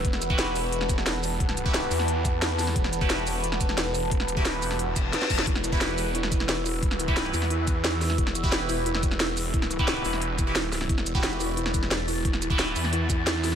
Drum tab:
HH |x-x-x-o-x-x-x-o-|x-x-x-o-x-x-x-o-|x-x-x-o-x-x-x-o-|x-x-x-o-x-x-x-o-|
SH |--xx-xx---x---x-|--xx-xx---x---x-|--xx-xx---x---x-|--xx-xx---x---x-|
SD |-o--o----o-oo---|-o--o--o----o-oo|-o--o----o-oo---|-o--o--o----oo-o|
BD |o--o------o-----|o--o------o-----|o--o------o-----|o--o------o---o-|

HH |x-x-x-o-x-x-x-o-|x-x-x-o-x-x-x-o-|x-x-x-o-x-x-x-o-|x-x-x-o-x-x-x-o-|
SH |--xx-xx---x---x-|--xx-xx---x---x-|--xx-xx---x---x-|--xx-xx---x---x-|
SD |-o--o----o-oo---|-o--o--o----o-oo|-o--o----o-oo---|-o--o--o----o-oo|
BD |o--o------o-----|o--o------o-----|o--o------o-----|o--o------o-----|

HH |x-x-x-o-x-x-x-o-|x-x-x-o-x-x-x-o-|
SH |--xx-xx---x---x-|--xx-xx---x---x-|
SD |-o--o----o-oo---|-o--o--o----o-oo|
BD |o--o------o-----|o--o------o-----|